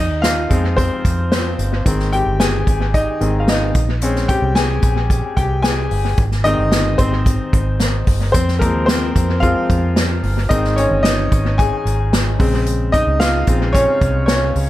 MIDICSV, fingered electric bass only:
0, 0, Header, 1, 2, 480
1, 0, Start_track
1, 0, Key_signature, -4, "major"
1, 0, Tempo, 540394
1, 1652, Time_signature, 4, 2, 24, 8
1, 13053, End_track
2, 0, Start_track
2, 0, Title_t, "Fingered electric bass"
2, 0, Program_c, 0, 33
2, 0, Note_on_c, 0, 41, 89
2, 92, Note_off_c, 0, 41, 0
2, 92, Note_on_c, 0, 39, 73
2, 427, Note_off_c, 0, 39, 0
2, 450, Note_on_c, 0, 41, 79
2, 786, Note_off_c, 0, 41, 0
2, 931, Note_on_c, 0, 41, 73
2, 1378, Note_off_c, 0, 41, 0
2, 1408, Note_on_c, 0, 31, 85
2, 1633, Note_off_c, 0, 31, 0
2, 1652, Note_on_c, 0, 32, 86
2, 1987, Note_off_c, 0, 32, 0
2, 2010, Note_on_c, 0, 31, 85
2, 2346, Note_off_c, 0, 31, 0
2, 2371, Note_on_c, 0, 32, 82
2, 2707, Note_off_c, 0, 32, 0
2, 2852, Note_on_c, 0, 32, 75
2, 3298, Note_off_c, 0, 32, 0
2, 3330, Note_on_c, 0, 34, 83
2, 3896, Note_off_c, 0, 34, 0
2, 3927, Note_on_c, 0, 36, 84
2, 4264, Note_off_c, 0, 36, 0
2, 4290, Note_on_c, 0, 34, 90
2, 4626, Note_off_c, 0, 34, 0
2, 4770, Note_on_c, 0, 36, 82
2, 5218, Note_off_c, 0, 36, 0
2, 5251, Note_on_c, 0, 31, 87
2, 5475, Note_off_c, 0, 31, 0
2, 5489, Note_on_c, 0, 32, 99
2, 5825, Note_off_c, 0, 32, 0
2, 5850, Note_on_c, 0, 31, 76
2, 6186, Note_off_c, 0, 31, 0
2, 6210, Note_on_c, 0, 32, 86
2, 6546, Note_off_c, 0, 32, 0
2, 6690, Note_on_c, 0, 32, 69
2, 7137, Note_off_c, 0, 32, 0
2, 7169, Note_on_c, 0, 31, 85
2, 7394, Note_off_c, 0, 31, 0
2, 7413, Note_on_c, 0, 41, 92
2, 7769, Note_off_c, 0, 41, 0
2, 7769, Note_on_c, 0, 39, 77
2, 8105, Note_off_c, 0, 39, 0
2, 8135, Note_on_c, 0, 41, 81
2, 8468, Note_off_c, 0, 41, 0
2, 8613, Note_on_c, 0, 41, 84
2, 9059, Note_off_c, 0, 41, 0
2, 9091, Note_on_c, 0, 31, 92
2, 9315, Note_off_c, 0, 31, 0
2, 9333, Note_on_c, 0, 32, 97
2, 9667, Note_off_c, 0, 32, 0
2, 9690, Note_on_c, 0, 31, 86
2, 10026, Note_off_c, 0, 31, 0
2, 10054, Note_on_c, 0, 32, 92
2, 10388, Note_off_c, 0, 32, 0
2, 10528, Note_on_c, 0, 32, 86
2, 10977, Note_off_c, 0, 32, 0
2, 11011, Note_on_c, 0, 34, 89
2, 11577, Note_off_c, 0, 34, 0
2, 11609, Note_on_c, 0, 37, 84
2, 11946, Note_off_c, 0, 37, 0
2, 11969, Note_on_c, 0, 34, 86
2, 12306, Note_off_c, 0, 34, 0
2, 12447, Note_on_c, 0, 36, 87
2, 12896, Note_off_c, 0, 36, 0
2, 12930, Note_on_c, 0, 37, 90
2, 13053, Note_off_c, 0, 37, 0
2, 13053, End_track
0, 0, End_of_file